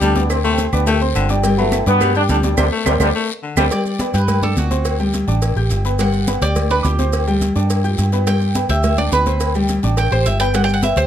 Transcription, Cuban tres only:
3.72 4.12 D5 medium
4.15 4.41 B4 medium
4.43 4.57 A4 medium
4.58 4.97 F#4 soft
6.00 6.40 F#5 medium
6.42 6.69 D5 medium
6.71 6.84 B4 medium
6.85 7.25 G4 medium
8.27 8.67 G5 medium
8.70 8.96 E5 medium
8.98 9.12 D5 medium
9.13 9.52 B4 medium
9.98 10.11 G5 medium
10.12 10.26 C5 medium
10.26 10.39 E5 medium
10.40 10.54 G5 loud
10.55 10.64 F#5 medium
10.64 10.73 G5 loud
10.74 10.83 F#5 medium
10.83 10.97 E5 medium
10.97 11.07 C5 medium

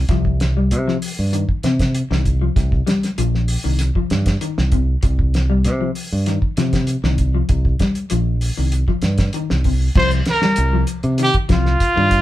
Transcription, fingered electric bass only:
0.09 0.73 C2 medium
0.71 0.96 C3 medium
1.19 1.43 G2 medium
1.64 2.01 C3 medium
2.11 2.48 C2 medium
2.56 2.81 C2 loud
3.18 3.56 A#1 medium
3.65 3.90 C2 medium
4.11 4.36 G2 medium
4.58 4.95 C2 medium
5.03 5.67 C2 medium
5.65 5.90 C3 medium
6.12 6.37 G2 medium
6.58 6.95 C3 medium
7.04 7.41 C2 medium
7.49 7.74 C2 loud
8.12 8.49 A#1 medium
8.58 8.83 C2 medium
9.03 9.28 G2 medium
9.51 9.88 C2 medium
9.95 10.20 C2 loud
10.58 10.83 C2 medium
11.04 11.29 C3 medium
11.50 11.75 C2 medium
11.97 12.22 G2 loud

